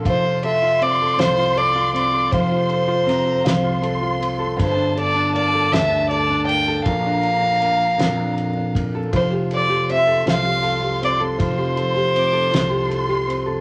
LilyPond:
<<
  \new Staff \with { instrumentName = "Violin section" } { \time 6/8 \key f \major \tempo 4. = 53 c'''2.~ | c'''4 bes''8 c'''4. | a''2. | bes''2~ bes''8 r8 |
c'''2.~ | c'''4 d'''8 c'''4. | }
  \new Staff \with { instrumentName = "Violin" } { \time 6/8 \key f \major c''8 e''8 d''8 c''8 d''8 d''8 | c''2~ c''8 r8 | c''8 d''8 d''8 e''8 d''8 g''8 | f''2~ f''8 r8 |
c''8 d''8 e''8 f''4 d''8 | c''2~ c''8 r8 | }
  \new Staff \with { instrumentName = "Nylon-string guitar" } { \time 6/8 \key f \major f16 f'16 a'16 f'16 c'16 a'16 f16 f'16 a'16 f'16 c'16 a'16 | f16 f'16 a'16 f'16 c'16 a'16 f16 f'16 a'16 f'16 c'16 a'16 | g,16 d'16 a'16 d'16 bes16 a'16 g,16 d'16 a'16 d'16 bes16 a'16 | bes,16 d'8 d'16 bes8 bes,16 d'8 d'16 bes16 a'16 |
f16 g'16 a'16 g'16 c'16 a'16 f16 g'16 a'16 g'16 c'16 a'16 | f16 g'16 a'16 g'16 c'16 a'16 f16 g'16 a'16 g'16 c'16 a'16 | }
  \new Staff \with { instrumentName = "Fretless electric bass" } { \clef bass \time 6/8 \key f \major f,,4. c,4. | f,,4. c,4. | g,,4. d,4. | bes,,4. f,4. |
f,,4. c,4. | f,,4. c,4. | }
  \new DrumStaff \with { instrumentName = "Drums" } \drummode { \time 6/8 <bd cymr>8 cymr8 cymr8 <cymr sn>8 cymr8 cymr8 | <bd cymr>8 cymr8 <cymr sn>8 <cymr sn>8 cymr8 cymr8 | <bd cymr>8 cymr8 cymr8 <cymr sn>8 cymr8 cymr8 | <bd cymr>8 cymr8 cymr8 <cymr sn>8 cymr8 <bd cymr>8 |
<bd cymr>8 cymr8 cymr8 <cymr sn>8 cymr8 cymr8 | <bd cymr>8 cymr8 cymr8 <cymr sn>8 cymr8 cymr8 | }
>>